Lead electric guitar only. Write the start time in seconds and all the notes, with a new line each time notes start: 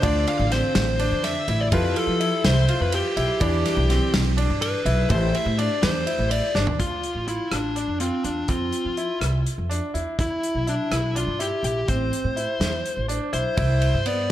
0.04 D5
0.28 F5
0.52 C5
1.24 E5
1.60 D5
1.73 B4
1.97 A4
2.45 C5
2.82 B4
2.94 G4
4.62 B4
5.12 C5
5.35 E5
5.59 D5
5.83 C5
6.31 D5
6.80 F4
7.28 E4
7.52 D4
8.01 C4
8.25 D4
8.49 F4
10.20 E4
10.69 D4
10.93 E4
11.17 F4
11.41 G4
11.65 G4
11.89 C5
13.33 C5
14.07 D5